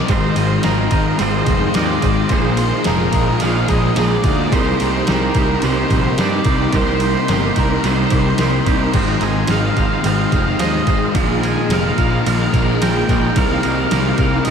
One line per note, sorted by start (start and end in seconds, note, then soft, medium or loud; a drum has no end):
0.00 0.10 A#3 medium
0.00 0.11 D#4 medium
0.00 0.11 G4 medium
0.00 0.11 A#4 medium
0.00 0.11 D5 medium
0.08 0.30 G#1 medium
0.08 0.63 G#2 medium
0.08 0.64 D#3 medium
0.08 1.19 G#3 medium
0.08 0.66 G#3 loud
0.08 0.62 C4 medium
0.08 0.39 F4 medium
0.08 4.49 G#4 medium
0.08 0.64 C5 medium
0.08 0.66 C5 medium
0.08 0.37 C5 medium
0.08 0.37 D#5 loud
0.08 2.30 C6 loud
0.08 kick loud
0.08 ride medium
0.13 2.31 F5 medium
0.36 0.57 G#1 medium
0.36 0.64 F4 medium
0.36 0.64 C5 medium
0.36 0.65 D#5 medium
0.36 ride medium
0.63 0.86 G#1 medium
0.63 1.17 G#2 medium
0.63 1.18 D#3 medium
0.63 1.19 G#3 medium
0.63 1.19 C4 medium
0.63 0.94 F4 medium
0.63 2.04 G#4 medium
0.63 0.91 A#4 medium
0.63 0.92 C5 medium
0.63 0.92 D#5 medium
0.63 snare loud
0.63 ride medium
0.91 1.12 G#1 medium
0.91 1.20 F4 medium
0.91 1.19 A#4 medium
0.91 1.20 C5 medium
0.91 1.22 D#5 medium
0.91 kick medium
0.91 ride medium
1.18 1.41 G#1 medium
1.18 1.75 G#2 loud
1.18 1.48 D#3 loud
1.18 1.76 G#3 medium
1.18 1.46 G#3 loud
1.18 1.74 C4 medium
1.18 1.48 F4 loud
1.18 1.77 C5 medium
1.18 1.47 C5 loud
1.18 1.47 D#5 loud
1.18 ride medium
1.46 1.68 F1 loud
1.46 1.76 D#3 medium
1.46 1.77 G#3 medium
1.46 1.75 F4 medium
1.46 1.75 C5 medium
1.46 1.77 D#5 medium
1.46 kick medium
1.46 ride medium
1.74 1.96 D#2 medium
1.74 2.30 G#2 medium
1.74 2.30 D#3 medium
1.74 2.31 G#3 medium
1.74 2.29 C4 medium
1.74 2.04 F4 medium
1.74 2.04 C5 medium
1.74 2.03 C5 medium
1.74 2.33 D5 medium
1.74 2.02 D#5 medium
1.74 snare loud
1.74 ride medium
2.02 2.23 G#1 medium
2.02 2.31 F4 medium
2.02 2.30 G#4 medium
2.02 2.30 C5 medium
2.02 2.35 D#5 medium
2.02 kick medium
2.02 ride medium
2.29 2.71 A#1 medium
2.29 2.87 A#2 medium
2.29 2.84 A#2 medium
2.29 2.84 F3 medium
2.29 2.85 F3 medium
2.29 2.60 G#3 medium
2.29 2.87 A#3 loud
2.29 8.91 D#4 medium
2.29 2.60 D#4 medium
2.29 2.87 G#4 medium
2.29 2.58 G#4 medium
2.29 2.57 C5 medium
2.29 4.50 A#5 medium
2.29 kick loud
2.29 ride medium
2.44 snare soft
2.57 2.87 D#4 medium
2.57 2.87 G#4 medium
2.57 2.87 C5 medium
2.57 ride medium
2.62 2.86 G#3 medium
2.84 3.07 F1 medium
2.84 3.40 A#2 medium
2.84 3.41 F3 medium
2.84 3.42 F3 medium
2.84 3.15 G#3 medium
2.84 3.44 A#3 medium
2.84 3.15 D#4 medium
2.84 3.42 F4 medium
2.84 3.44 A#4 medium
2.84 snare loud
2.84 ride medium
2.89 3.13 G#4 medium
3.13 3.34 A#1 medium
3.13 3.42 G#3 medium
3.13 3.43 D#4 medium
3.13 3.43 G#4 medium
3.13 kick medium
3.13 ride medium
3.40 3.62 A#1 medium
3.40 3.97 A#2 loud
3.40 3.96 A#2 loud
3.40 3.95 F3 loud
3.40 3.70 F3 medium
3.40 3.70 G#3 loud
3.40 3.69 A#3 loud
3.40 3.70 D#4 loud
3.40 3.68 G#4 loud
3.40 3.70 F5 loud
3.40 ride loud
3.68 3.89 A#1 medium
3.68 3.97 F3 medium
3.68 3.96 G#3 medium
3.68 3.99 A#3 medium
3.68 3.98 D#4 medium
3.68 3.97 G#4 medium
3.68 3.96 G#4 medium
3.68 3.96 D#5 loud
3.68 kick medium
3.68 ride medium
3.96 4.17 A#1 medium
3.96 4.51 A#2 medium
3.96 4.50 F3 medium
3.96 4.52 F3 medium
3.96 4.25 G#3 medium
3.96 4.54 A#3 medium
3.96 4.25 D#4 medium
3.96 4.24 G#4 medium
3.96 4.23 G#4 medium
3.96 4.08 D#5 loud
3.96 snare loud
3.96 ride loud
4.08 4.54 D5 loud
4.24 4.44 D2 medium
4.24 4.52 G#3 medium
4.24 4.53 D#4 medium
4.24 4.52 F4 medium
4.24 4.51 G#4 medium
4.24 kick medium
4.24 ride medium
4.52 4.72 C2 loud
4.52 5.11 C3 medium
4.52 5.08 C3 medium
4.52 5.63 G3 loud
4.52 5.10 G3 medium
4.52 4.82 A#3 medium
4.52 5.10 C4 loud
4.52 4.81 D#4 loud
4.52 4.80 G4 loud
4.52 5.91 A#4 medium
4.52 8.91 A#4 medium
4.52 5.08 C5 medium
4.52 4.79 C5 medium
4.52 11.12 C6 medium
4.52 kick loud
4.52 ride loud
4.80 5.01 C2 medium
4.80 5.07 A#3 medium
4.80 5.08 D#4 medium
4.80 5.09 G4 medium
4.80 5.10 C5 medium
4.80 ride medium
5.07 5.29 C2 medium
5.07 5.62 C3 medium
5.07 5.63 G3 medium
5.07 5.38 A#3 medium
5.07 5.65 C4 medium
5.07 5.37 D#4 medium
5.07 6.46 G4 medium
5.07 5.37 G4 medium
5.07 5.64 A#4 medium
5.07 5.36 C5 medium
5.07 snare loud
5.07 ride medium
5.35 5.55 C2 medium
5.35 5.64 D#4 medium
5.35 5.64 G4 medium
5.35 5.65 C5 medium
5.35 kick medium
5.35 ride medium
5.39 5.63 A#3 medium
5.62 5.83 C2 loud
5.62 6.18 C3 loud
5.62 6.19 G3 medium
5.62 5.93 G3 loud
5.62 5.92 A#3 medium
5.62 5.92 C4 loud
5.62 5.92 D#4 loud
5.62 5.91 G4 loud
5.62 6.21 C5 medium
5.62 5.90 C5 loud
5.62 ride medium
5.90 6.11 A#1 medium
5.90 6.17 A#3 medium
5.90 6.21 C4 medium
5.90 6.19 D#4 medium
5.90 6.19 G4 medium
5.90 6.18 A#4 medium
5.90 6.20 C5 medium
5.90 kick medium
5.90 ride medium
5.95 6.19 G3 medium
6.18 6.39 G2 medium
6.18 6.73 C3 medium
6.18 6.74 G3 medium
6.18 6.47 A#3 medium
6.18 6.75 C4 medium
6.18 6.47 D#4 medium
6.18 6.46 G4 medium
6.18 6.45 A#4 medium
6.18 6.46 C5 medium
6.18 6.76 D5 medium
6.18 snare loud
6.18 ride medium
6.44 6.66 C2 medium
6.44 6.75 D#4 medium
6.44 6.73 G4 medium
6.44 6.74 G4 medium
6.44 6.76 C5 medium
6.44 kick medium
6.44 ride medium
6.49 6.73 A#3 medium
6.73 7.14 C2 loud
6.73 7.29 C3 medium
6.73 7.29 G3 medium
6.73 7.02 A#3 medium
6.73 7.31 C4 loud
6.73 7.03 D#4 medium
6.73 7.01 G4 medium
6.73 7.29 A#4 medium
6.73 7.59 C5 medium
6.73 7.01 C5 medium
6.73 kick loud
6.73 ride medium
6.87 snare soft
7.00 7.28 A#3 medium
7.00 7.30 D#4 medium
7.00 7.30 G4 medium
7.00 7.31 C5 medium
7.00 ride medium
7.28 7.49 G1 medium
7.28 7.83 C3 medium
7.28 7.84 G3 medium
7.28 7.58 A#3 medium
7.28 7.85 C4 medium
7.28 7.57 D#4 medium
7.28 7.85 G4 medium
7.28 7.56 G4 medium
7.28 7.56 C5 medium
7.28 snare loud
7.28 ride medium
7.56 7.77 C2 medium
7.56 7.84 A#3 medium
7.56 7.86 D#4 medium
7.56 7.85 G4 medium
7.56 7.86 A#4 medium
7.56 7.86 C5 medium
7.56 kick medium
7.56 ride medium
7.84 8.04 C2 medium
7.84 8.38 C3 loud
7.84 8.40 C3 medium
7.84 8.40 G3 medium
7.84 8.14 G3 loud
7.84 8.13 A#3 loud
7.84 8.12 C4 loud
7.84 8.13 D#4 loud
7.84 8.11 G4 loud
7.84 8.64 C5 medium
7.84 8.10 C5 loud
7.84 ride medium
8.10 8.32 C2 medium
8.10 8.37 A#3 medium
8.10 8.40 C4 medium
8.10 8.39 D#4 medium
8.10 8.39 G4 medium
8.10 8.39 A#4 medium
8.10 8.40 C5 medium
8.10 kick medium
8.10 ride medium
8.15 8.39 G3 medium
8.38 8.59 C2 medium
8.38 8.93 C3 medium
8.38 8.94 G3 medium
8.38 8.68 A#3 medium
8.38 8.94 C4 medium
8.38 8.68 D#4 medium
8.38 8.66 G4 medium
8.38 8.68 A#4 medium
8.38 8.65 C5 medium
8.38 snare loud
8.38 ride loud
8.66 8.87 C2 medium
8.66 8.94 A#3 medium
8.66 8.95 D#4 medium
8.66 8.93 G4 medium
8.66 8.95 G4 medium
8.66 8.93 C5 medium
8.66 kick medium
8.66 ride medium
8.94 9.15 G#1 loud
8.94 9.49 G#2 medium
8.94 9.49 D#3 medium
8.94 10.04 G#3 medium
8.94 9.52 G#3 loud
8.94 9.48 C4 medium
8.94 9.24 F4 medium
8.94 11.13 G#4 medium
8.94 9.50 C5 medium
8.94 9.22 C5 loud
8.94 9.21 D#5 loud
8.94 11.13 F5 medium
8.94 kick loud
8.94 crash medium
9.08 snare soft
9.21 9.42 G#1 medium
9.21 9.50 F4 medium
9.21 9.50 C5 medium
9.21 9.51 D#5 medium
9.21 9.51 G#5 medium
9.21 ride medium
9.47 9.69 G#1 medium
9.47 10.03 G#2 medium
9.47 10.04 D#3 medium
9.47 10.04 C4 medium
9.47 9.79 F4 medium
9.47 10.89 G#4 medium
9.47 9.77 C5 medium
9.47 9.77 F5 medium
9.47 snare loud
9.47 ride medium
9.52 10.06 G#3 medium
9.52 9.76 D#5 medium
9.76 9.97 G#1 medium
9.76 10.05 F4 medium
9.76 10.05 C5 medium
9.76 10.07 D#5 medium
9.76 10.03 F5 medium
9.76 kick medium
9.76 ride medium
10.04 10.25 G#1 medium
10.04 10.58 G#2 medium
10.04 10.34 D#3 medium
10.04 10.60 G#3 medium
10.04 10.31 G#3 loud
10.04 10.58 C4 loud
10.04 10.33 F4 medium
10.04 10.32 C5 loud
10.04 10.31 D#5 loud
10.04 10.60 F5 loud
10.04 ride medium
10.32 10.53 F1 medium
10.32 10.60 D#3 medium
10.32 10.60 G#3 medium
10.32 10.58 F4 medium
10.32 10.59 C5 medium
10.32 10.60 C5 medium
10.32 10.61 D#5 medium
10.32 kick medium
10.32 ride medium
10.59 10.80 D#2 medium
10.59 11.13 G#2 medium
10.59 11.14 D#3 medium
10.59 11.14 G#3 medium
10.59 11.13 C4 medium
10.59 10.88 F4 medium
10.59 10.87 C5 medium
10.59 10.88 C5 medium
10.59 10.99 D#5 medium
10.59 10.87 D#5 medium
10.59 snare loud
10.59 ride medium
10.87 11.07 G#1 medium
10.87 11.15 F4 medium
10.87 11.15 G#4 medium
10.87 11.14 C5 medium
10.87 11.16 D#5 medium
10.87 kick medium
10.87 ride medium
11.14 11.55 A#1 loud
11.14 11.70 A#2 medium
11.14 11.70 D#3 medium
11.14 11.70 F3 medium
11.14 11.43 G#3 medium
11.14 11.72 A#3 medium
11.14 11.43 D#4 loud
11.14 14.50 D#4 medium
11.14 11.42 F4 loud
11.14 13.34 G#4 medium
11.14 11.71 G#4 medium
11.14 11.42 A#4 medium
11.14 13.34 A#5 medium
11.14 kick loud
11.14 ride medium
11.42 11.70 G#3 medium
11.42 11.72 D#4 medium
11.42 11.71 F4 medium
11.42 11.73 A#4 medium
11.42 11.73 G#5 loud
11.42 ride medium
11.69 11.90 F1 medium
11.69 12.24 A#2 medium
11.69 12.25 F3 medium
11.69 12.00 G#3 medium
11.69 12.27 A#3 medium
11.69 12.00 D#4 medium
11.69 12.26 F4 medium
11.69 11.98 F4 medium
11.69 snare loud
11.69 ride medium
11.73 11.98 A#4 medium
11.73 11.97 F5 medium
11.98 12.19 A#1 medium
11.98 12.25 G#3 medium
11.98 12.27 D#4 medium
11.98 12.26 F4 medium
11.98 12.27 A#4 medium
11.98 12.84 F5 loud
11.98 kick medium
11.98 ride medium
12.25 12.47 A#1 medium
12.25 12.80 A#2 loud
12.25 12.81 A#2 medium
12.25 12.81 D#3 medium
12.25 12.54 F3 loud
12.25 12.54 G#3 loud
12.25 12.53 A#3 loud
12.25 12.54 D#4 medium
12.25 12.53 F4 loud
12.25 12.52 A#4 loud
12.25 ride loud
12.53 12.73 A#1 medium
12.53 12.81 F3 medium
12.53 12.80 G#3 medium
12.53 12.83 A#3 medium
12.53 12.81 D#4 medium
12.53 12.81 F4 medium
12.53 12.80 G#4 medium
12.53 12.83 A#4 medium
12.53 kick medium
12.53 ride medium
12.81 13.02 A#1 medium
12.81 13.35 A#2 medium
12.81 13.35 F3 medium
12.81 13.10 G#3 medium
12.81 13.39 A#3 medium
12.81 13.10 D#4 medium
12.81 13.09 F4 medium
12.81 13.09 G#4 medium
12.81 13.09 A#4 medium
12.81 13.10 G5 loud
12.81 snare loud
12.81 ride loud
13.09 13.29 A#1 medium
13.09 13.36 G#3 medium
13.09 13.37 D#4 medium
13.09 13.36 F4 medium
13.09 13.35 F4 medium
13.09 13.37 A#4 medium
13.09 13.38 G5 medium
13.09 kick medium
13.09 ride medium
13.35 13.56 C2 loud
13.35 13.94 C3 medium
13.35 13.91 C3 medium
13.35 13.90 G3 medium
13.35 13.93 G3 loud
13.35 13.65 A#3 loud
13.35 13.64 D#4 medium
13.35 14.50 A#4 medium
13.35 13.63 A#4 loud
13.35 13.91 F5 medium
13.35 14.50 C6 loud
13.35 kick loud
13.35 ride loud
13.39 13.94 C4 medium
13.51 snare soft
13.63 13.85 C2 medium
13.63 13.91 A#3 medium
13.63 13.92 D#4 medium
13.63 13.93 A#4 medium
13.63 ride medium
13.90 14.12 C2 medium
13.90 14.46 C3 medium
13.90 14.46 G3 medium
13.90 14.21 A#3 medium
13.90 14.48 C4 medium
13.90 14.20 D#4 medium
13.90 14.50 G4 medium
13.90 14.18 A#4 medium
13.90 14.16 F5 medium
13.90 snare loud
13.90 ride medium
14.17 14.39 C2 medium
14.17 14.46 A#3 medium
14.17 14.48 D#4 medium
14.17 14.47 A#4 medium
14.17 14.45 F5 medium
14.17 kick medium
14.17 ride medium
14.45 14.50 C2 medium
14.45 14.50 C3 loud
14.45 14.50 C3 medium
14.45 14.50 G3 loud
14.45 14.50 D#5 medium
14.45 ride medium